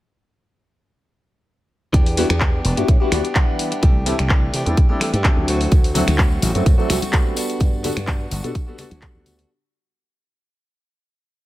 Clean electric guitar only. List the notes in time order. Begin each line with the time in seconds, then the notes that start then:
1.93 E3 B3 D4 G4
2.16 E3 B3 D4 G4
2.29 B3 D4 G4
2.41 E3 B3 G4
2.64 E3 B3 D4 G4
2.76 B3 D4 G4
3.00 B3 D4 G4
3.11 E3 B3 D4 G4
3.23 B3 D4 G4
3.35 E3 B3 D4 G4
3.71 B3 D4 G4
3.82 E3 A3 D4 G4
4.05 E3 A3 D4 G4
4.18 A3 D4 G4
4.30 E3 A3 D4 G4
4.53 E3 A3 D4 G4
4.66 A3 D4 G4
4.89 A3 D4 G4
5.00 E3 A3 D4 G4
5.13 A3 D4 G4
5.24 E3 D4 G4
5.48 F#3 A3 C4 F#4
5.94 F#3 A3 C4 F#4
6.07 A3 C4 F#4
6.18 F#3 A3 F#4
6.42 F#3 A3 C4 F#4
6.54 A3 C4 F#4
6.78 A3 C4 F#4
6.89 F#3 A3 C4 F#4
7.01 A3 C4 F#4
7.12 F#3 A3 C4 F#4
7.36 B3 D4 F#4
7.83 B3 D4 F#4
7.95 D4 F#4
8.07 B3 D4 F#4
8.30 B3 D4 F#4
8.43 D4 F#4
8.67 D4 F#4
8.78 B3 D4 F#4
8.90 F#4
9.01 B3 F#4
9.38 D4 F#4